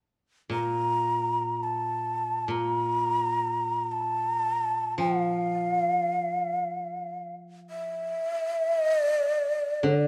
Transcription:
0.50 koto A#2, shakuhachi A#5
1.63 shakuhachi A5
2.48 koto A#2, shakuhachi A#5
3.92 shakuhachi A5
4.98 koto F3, shakuhachi F5
7.70 shakuhachi E5
8.78 shakuhachi D#5
9.05 shakuhachi D5
9.83 koto D3, shakuhachi C#5
9.98 shakuhachi D5

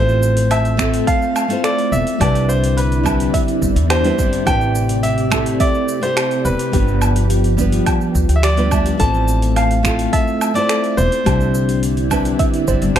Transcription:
Already playing: upright bass A1, nylon-string guitar A3 C4 E4 F4 C5, string machine A3, synth arpeggio sound A4, grand piano C5
0.09 cabasa
0.23 cabasa
0.37 open hi-hat, cabasa
0.51 grand piano E5, open hi-hat, cabasa, low woodblock
0.65 open hi-hat, cabasa
0.77 nylon-string guitar A3 C4 F4, finger snap, kick, cabasa
0.81 nylon-string guitar A4
0.94 open hi-hat, cabasa
1.07 grand piano F5, synth arpeggio sound A5, kick, open hi-hat, cabasa
1.22 cabasa
1.36 cabasa, low woodblock
1.48 nylon-string guitar A3 C4 E4 F4, open hi-hat, cabasa
1.52 nylon-string guitar C5
1.64 synth arpeggio sound A4, grand piano D5, finger snap, open hi-hat, cabasa
1.78 open hi-hat, cabasa
1.92 upright bass E1, grand piano E5, cabasa
2.07 open hi-hat, cabasa
2.19 upright bass C2, string machine D3 E4 D5, nylon-string guitar G3 C4 D4 E4, synth arpeggio sound G4, grand piano D5, kick, open hi-hat, cabasa, low woodblock
2.23 nylon-string guitar B4
2.35 open hi-hat, cabasa
2.49 grand piano C5, cabasa
2.64 open hi-hat, cabasa
2.77 grand piano B4, open hi-hat, cabasa
2.92 open hi-hat, cabasa
3.03 nylon-string guitar G3 C4 D4 E4, kick, cabasa, low woodblock
3.08 nylon-string guitar B4
3.20 open hi-hat, cabasa
3.34 synth arpeggio sound E5, kick, open hi-hat, cabasa
3.48 open hi-hat, cabasa
3.62 upright bass G1, kick, cabasa
3.76 upright bass E2, open hi-hat, cabasa
3.90 synth arpeggio sound G4, grand piano C5, finger snap, open hi-hat, cabasa, low woodblock
4.04 nylon-string guitar G3 C4 D4 E4 B4, open hi-hat, cabasa
4.18 upright bass G1, nylon-string guitar G3 C4 D4 E4 D5, kick, cabasa
4.33 open hi-hat, cabasa
4.45 upright bass A1, string machine C3 G4, nylon-string guitar A3 C4 E4 G4, synth arpeggio sound G4, grand piano G5, kick, open hi-hat, cabasa, low woodblock
4.50 nylon-string guitar B4
4.61 cabasa
4.75 cabasa
4.89 open hi-hat, cabasa
5.03 grand piano E5, open hi-hat, cabasa
5.18 open hi-hat, cabasa
5.30 nylon-string guitar A3 C4 E4 G4 A4, finger snap, kick, cabasa, low woodblock
5.46 open hi-hat, cabasa
5.60 grand piano D5, synth arpeggio sound E5, kick, open hi-hat, cabasa
5.74 cabasa
5.88 cabasa
6.01 nylon-string guitar A3 C4 E4 G4 C5, grand piano C5, open hi-hat, cabasa
6.17 synth arpeggio sound G4, finger snap, open hi-hat, cabasa, low woodblock
6.31 open hi-hat, cabasa
6.45 upright bass E1, grand piano B4, cabasa
6.59 open hi-hat, cabasa
6.72 upright bass G1, string machine F3, nylon-string guitar G3 B3 D4 F4 B4, synth arpeggio sound G4, kick, open hi-hat, cabasa
6.88 cabasa
7.02 cabasa, low woodblock
7.16 open hi-hat, cabasa
7.30 open hi-hat, cabasa
7.44 open hi-hat, cabasa
7.57 nylon-string guitar G3 B3 D4 F4 B4, kick, cabasa
7.72 open hi-hat, cabasa
7.86 synth arpeggio sound G5, kick, open hi-hat, cabasa, low woodblock
8.01 cabasa
8.15 upright bass D2, kick, cabasa
8.29 upright bass D2, open hi-hat, cabasa
8.36 grand piano E5
8.43 synth arpeggio sound G4, grand piano D5, finger snap, open hi-hat, cabasa
8.57 nylon-string guitar G3 B3 D4 F4 B4, open hi-hat, cabasa
8.71 nylon-string guitar G3 B3 D4 F4 E5, kick, cabasa, low woodblock
8.86 open hi-hat, cabasa
8.98 upright bass A1, nylon-string guitar A3 C4 E4 F4, string machine A3, synth arpeggio sound A4, grand piano A5, kick, open hi-hat, cabasa
9.02 nylon-string guitar C5
9.14 cabasa
9.28 cabasa
9.42 open hi-hat, cabasa
9.56 grand piano F5, open hi-hat, cabasa, low woodblock
9.71 open hi-hat, cabasa
9.83 nylon-string guitar A3 C4 E4 F4, finger snap, kick, cabasa
9.87 nylon-string guitar A4
9.99 open hi-hat, cabasa
10.13 grand piano E5, synth arpeggio sound A5, kick, open hi-hat, cabasa
10.27 cabasa
10.41 cabasa, low woodblock
10.54 nylon-string guitar A3 C4 E4 F4, grand piano D5, open hi-hat, cabasa
10.58 nylon-string guitar C5
10.69 synth arpeggio sound A4, finger snap, open hi-hat, cabasa
10.84 open hi-hat, cabasa
10.97 upright bass E1, grand piano C5, cabasa
11.12 open hi-hat, cabasa
11.25 upright bass C2, string machine D3 E4 D5, nylon-string guitar G3 C4 D4 E4, synth arpeggio sound G4, kick, open hi-hat, cabasa, low woodblock
11.29 nylon-string guitar C5
11.41 cabasa
11.55 cabasa
11.69 open hi-hat, cabasa
11.83 open hi-hat, cabasa
11.97 open hi-hat, cabasa
12.10 nylon-string guitar G3 C4 D4 E4 B4, kick, cabasa, low woodblock
12.25 open hi-hat, cabasa
12.39 synth arpeggio sound E5, kick, open hi-hat, cabasa
12.54 open hi-hat, cabasa
12.67 upright bass G1, nylon-string guitar G3 C4 D4 E4 D5, synth arpeggio sound C5, kick, cabasa
12.82 upright bass G1, open hi-hat, cabasa
12.96 upright bass G1, synth arpeggio sound G4, grand piano C5, finger snap, open hi-hat, cabasa, low woodblock

